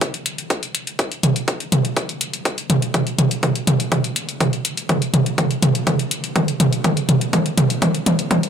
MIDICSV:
0, 0, Header, 1, 2, 480
1, 0, Start_track
1, 0, Tempo, 487805
1, 974, Time_signature, 4, 2, 24, 8
1, 8357, End_track
2, 0, Start_track
2, 0, Title_t, "Drums"
2, 14, Note_on_c, 9, 36, 119
2, 14, Note_on_c, 9, 42, 65
2, 112, Note_off_c, 9, 42, 0
2, 113, Note_off_c, 9, 36, 0
2, 138, Note_on_c, 9, 42, 44
2, 236, Note_off_c, 9, 42, 0
2, 254, Note_on_c, 9, 42, 105
2, 352, Note_off_c, 9, 42, 0
2, 378, Note_on_c, 9, 42, 45
2, 476, Note_off_c, 9, 42, 0
2, 494, Note_on_c, 9, 36, 119
2, 494, Note_on_c, 9, 42, 67
2, 592, Note_off_c, 9, 42, 0
2, 593, Note_off_c, 9, 36, 0
2, 618, Note_on_c, 9, 42, 44
2, 716, Note_off_c, 9, 42, 0
2, 734, Note_on_c, 9, 42, 105
2, 833, Note_off_c, 9, 42, 0
2, 858, Note_on_c, 9, 42, 44
2, 956, Note_off_c, 9, 42, 0
2, 974, Note_on_c, 9, 36, 121
2, 974, Note_on_c, 9, 42, 63
2, 1072, Note_off_c, 9, 42, 0
2, 1073, Note_off_c, 9, 36, 0
2, 1098, Note_on_c, 9, 42, 42
2, 1196, Note_off_c, 9, 42, 0
2, 1214, Note_on_c, 9, 42, 106
2, 1214, Note_on_c, 9, 47, 75
2, 1312, Note_off_c, 9, 42, 0
2, 1312, Note_off_c, 9, 47, 0
2, 1337, Note_on_c, 9, 42, 42
2, 1436, Note_off_c, 9, 42, 0
2, 1454, Note_on_c, 9, 36, 123
2, 1454, Note_on_c, 9, 42, 63
2, 1552, Note_off_c, 9, 42, 0
2, 1553, Note_off_c, 9, 36, 0
2, 1578, Note_on_c, 9, 42, 43
2, 1676, Note_off_c, 9, 42, 0
2, 1694, Note_on_c, 9, 42, 106
2, 1694, Note_on_c, 9, 47, 85
2, 1792, Note_off_c, 9, 42, 0
2, 1792, Note_off_c, 9, 47, 0
2, 1818, Note_on_c, 9, 42, 43
2, 1916, Note_off_c, 9, 42, 0
2, 1934, Note_on_c, 9, 36, 119
2, 1934, Note_on_c, 9, 42, 65
2, 2032, Note_off_c, 9, 42, 0
2, 2033, Note_off_c, 9, 36, 0
2, 2058, Note_on_c, 9, 42, 42
2, 2156, Note_off_c, 9, 42, 0
2, 2174, Note_on_c, 9, 42, 105
2, 2272, Note_off_c, 9, 42, 0
2, 2298, Note_on_c, 9, 42, 43
2, 2396, Note_off_c, 9, 42, 0
2, 2414, Note_on_c, 9, 42, 62
2, 2415, Note_on_c, 9, 36, 116
2, 2513, Note_off_c, 9, 36, 0
2, 2513, Note_off_c, 9, 42, 0
2, 2538, Note_on_c, 9, 42, 42
2, 2636, Note_off_c, 9, 42, 0
2, 2654, Note_on_c, 9, 42, 102
2, 2654, Note_on_c, 9, 47, 87
2, 2752, Note_off_c, 9, 42, 0
2, 2752, Note_off_c, 9, 47, 0
2, 2778, Note_on_c, 9, 42, 43
2, 2876, Note_off_c, 9, 42, 0
2, 2894, Note_on_c, 9, 42, 62
2, 2894, Note_on_c, 9, 47, 47
2, 2895, Note_on_c, 9, 36, 116
2, 2993, Note_off_c, 9, 36, 0
2, 2993, Note_off_c, 9, 42, 0
2, 2993, Note_off_c, 9, 47, 0
2, 3018, Note_on_c, 9, 42, 42
2, 3116, Note_off_c, 9, 42, 0
2, 3134, Note_on_c, 9, 42, 103
2, 3134, Note_on_c, 9, 47, 77
2, 3233, Note_off_c, 9, 42, 0
2, 3233, Note_off_c, 9, 47, 0
2, 3258, Note_on_c, 9, 42, 42
2, 3356, Note_off_c, 9, 42, 0
2, 3374, Note_on_c, 9, 42, 63
2, 3374, Note_on_c, 9, 47, 48
2, 3375, Note_on_c, 9, 36, 115
2, 3473, Note_off_c, 9, 36, 0
2, 3473, Note_off_c, 9, 42, 0
2, 3473, Note_off_c, 9, 47, 0
2, 3498, Note_on_c, 9, 42, 41
2, 3596, Note_off_c, 9, 42, 0
2, 3614, Note_on_c, 9, 42, 104
2, 3614, Note_on_c, 9, 47, 89
2, 3713, Note_off_c, 9, 42, 0
2, 3713, Note_off_c, 9, 47, 0
2, 3738, Note_on_c, 9, 42, 43
2, 3836, Note_off_c, 9, 42, 0
2, 3854, Note_on_c, 9, 42, 65
2, 3854, Note_on_c, 9, 47, 52
2, 3855, Note_on_c, 9, 36, 120
2, 3953, Note_off_c, 9, 36, 0
2, 3953, Note_off_c, 9, 42, 0
2, 3953, Note_off_c, 9, 47, 0
2, 3978, Note_on_c, 9, 42, 43
2, 4077, Note_off_c, 9, 42, 0
2, 4094, Note_on_c, 9, 42, 104
2, 4193, Note_off_c, 9, 42, 0
2, 4218, Note_on_c, 9, 42, 41
2, 4316, Note_off_c, 9, 42, 0
2, 4335, Note_on_c, 9, 36, 117
2, 4335, Note_on_c, 9, 42, 63
2, 4335, Note_on_c, 9, 47, 56
2, 4433, Note_off_c, 9, 36, 0
2, 4433, Note_off_c, 9, 42, 0
2, 4433, Note_off_c, 9, 47, 0
2, 4458, Note_on_c, 9, 42, 40
2, 4556, Note_off_c, 9, 42, 0
2, 4574, Note_on_c, 9, 42, 104
2, 4673, Note_off_c, 9, 42, 0
2, 4698, Note_on_c, 9, 42, 43
2, 4796, Note_off_c, 9, 42, 0
2, 4814, Note_on_c, 9, 42, 62
2, 4814, Note_on_c, 9, 47, 56
2, 4815, Note_on_c, 9, 36, 112
2, 4913, Note_off_c, 9, 36, 0
2, 4913, Note_off_c, 9, 42, 0
2, 4913, Note_off_c, 9, 47, 0
2, 4938, Note_on_c, 9, 42, 43
2, 5036, Note_off_c, 9, 42, 0
2, 5054, Note_on_c, 9, 42, 100
2, 5054, Note_on_c, 9, 47, 84
2, 5153, Note_off_c, 9, 42, 0
2, 5153, Note_off_c, 9, 47, 0
2, 5178, Note_on_c, 9, 42, 43
2, 5277, Note_off_c, 9, 42, 0
2, 5294, Note_on_c, 9, 36, 118
2, 5295, Note_on_c, 9, 42, 63
2, 5295, Note_on_c, 9, 47, 60
2, 5393, Note_off_c, 9, 36, 0
2, 5393, Note_off_c, 9, 42, 0
2, 5393, Note_off_c, 9, 47, 0
2, 5418, Note_on_c, 9, 42, 42
2, 5516, Note_off_c, 9, 42, 0
2, 5535, Note_on_c, 9, 42, 100
2, 5535, Note_on_c, 9, 47, 95
2, 5633, Note_off_c, 9, 42, 0
2, 5633, Note_off_c, 9, 47, 0
2, 5658, Note_on_c, 9, 42, 41
2, 5757, Note_off_c, 9, 42, 0
2, 5774, Note_on_c, 9, 42, 62
2, 5774, Note_on_c, 9, 47, 65
2, 5775, Note_on_c, 9, 36, 113
2, 5873, Note_off_c, 9, 36, 0
2, 5873, Note_off_c, 9, 42, 0
2, 5873, Note_off_c, 9, 47, 0
2, 5898, Note_on_c, 9, 42, 43
2, 5996, Note_off_c, 9, 42, 0
2, 6014, Note_on_c, 9, 42, 98
2, 6113, Note_off_c, 9, 42, 0
2, 6138, Note_on_c, 9, 42, 42
2, 6236, Note_off_c, 9, 42, 0
2, 6254, Note_on_c, 9, 36, 114
2, 6254, Note_on_c, 9, 42, 64
2, 6254, Note_on_c, 9, 47, 68
2, 6353, Note_off_c, 9, 36, 0
2, 6353, Note_off_c, 9, 42, 0
2, 6353, Note_off_c, 9, 47, 0
2, 6378, Note_on_c, 9, 42, 41
2, 6476, Note_off_c, 9, 42, 0
2, 6494, Note_on_c, 9, 42, 100
2, 6494, Note_on_c, 9, 47, 95
2, 6593, Note_off_c, 9, 42, 0
2, 6593, Note_off_c, 9, 47, 0
2, 6618, Note_on_c, 9, 42, 42
2, 6716, Note_off_c, 9, 42, 0
2, 6734, Note_on_c, 9, 36, 115
2, 6734, Note_on_c, 9, 42, 63
2, 6734, Note_on_c, 9, 47, 72
2, 6833, Note_off_c, 9, 36, 0
2, 6833, Note_off_c, 9, 42, 0
2, 6833, Note_off_c, 9, 47, 0
2, 6858, Note_on_c, 9, 42, 45
2, 6956, Note_off_c, 9, 42, 0
2, 6974, Note_on_c, 9, 42, 98
2, 6974, Note_on_c, 9, 47, 84
2, 7072, Note_off_c, 9, 42, 0
2, 7072, Note_off_c, 9, 47, 0
2, 7098, Note_on_c, 9, 42, 44
2, 7196, Note_off_c, 9, 42, 0
2, 7214, Note_on_c, 9, 36, 113
2, 7214, Note_on_c, 9, 42, 66
2, 7214, Note_on_c, 9, 47, 77
2, 7312, Note_off_c, 9, 42, 0
2, 7312, Note_off_c, 9, 47, 0
2, 7313, Note_off_c, 9, 36, 0
2, 7338, Note_on_c, 9, 42, 43
2, 7436, Note_off_c, 9, 42, 0
2, 7454, Note_on_c, 9, 42, 101
2, 7454, Note_on_c, 9, 47, 95
2, 7552, Note_off_c, 9, 42, 0
2, 7552, Note_off_c, 9, 47, 0
2, 7578, Note_on_c, 9, 42, 44
2, 7676, Note_off_c, 9, 42, 0
2, 7694, Note_on_c, 9, 36, 115
2, 7694, Note_on_c, 9, 42, 66
2, 7694, Note_on_c, 9, 47, 83
2, 7792, Note_off_c, 9, 42, 0
2, 7792, Note_off_c, 9, 47, 0
2, 7793, Note_off_c, 9, 36, 0
2, 7818, Note_on_c, 9, 42, 45
2, 7916, Note_off_c, 9, 42, 0
2, 7934, Note_on_c, 9, 42, 99
2, 7934, Note_on_c, 9, 47, 83
2, 8033, Note_off_c, 9, 42, 0
2, 8033, Note_off_c, 9, 47, 0
2, 8058, Note_on_c, 9, 42, 44
2, 8156, Note_off_c, 9, 42, 0
2, 8174, Note_on_c, 9, 36, 115
2, 8174, Note_on_c, 9, 42, 67
2, 8174, Note_on_c, 9, 47, 84
2, 8273, Note_off_c, 9, 36, 0
2, 8273, Note_off_c, 9, 42, 0
2, 8273, Note_off_c, 9, 47, 0
2, 8298, Note_on_c, 9, 42, 43
2, 8357, Note_off_c, 9, 42, 0
2, 8357, End_track
0, 0, End_of_file